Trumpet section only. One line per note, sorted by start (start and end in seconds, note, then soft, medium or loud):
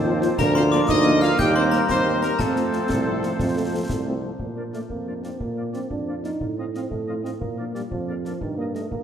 0.00 0.18 A4 loud
0.38 0.54 A#4 loud
0.55 0.63 C5 loud
0.72 0.80 D5 loud
0.88 1.19 D#5 loud
1.22 1.38 F5 loud
1.39 1.54 G5 loud
1.55 1.63 C5 loud
1.73 1.80 A#4 loud
1.89 2.20 C5 loud
2.22 2.38 A#4 loud
2.40 4.23 A4 medium
4.56 4.62 F5 soft
4.72 4.79 F5 soft
5.06 5.12 F5 soft
5.23 5.29 F5 soft
5.56 5.63 F5 soft
5.74 5.80 F5 soft
6.08 6.14 F5 soft
6.25 6.31 F5 soft
6.59 6.64 F5 soft
6.75 6.81 F5 soft
7.08 7.14 F5 soft
7.25 7.31 F5 soft
7.58 7.64 F5 soft
7.75 7.81 F5 soft
8.09 8.15 F5 medium
8.26 8.32 F5 soft
8.59 8.65 D#5 soft
8.76 8.82 D#5 soft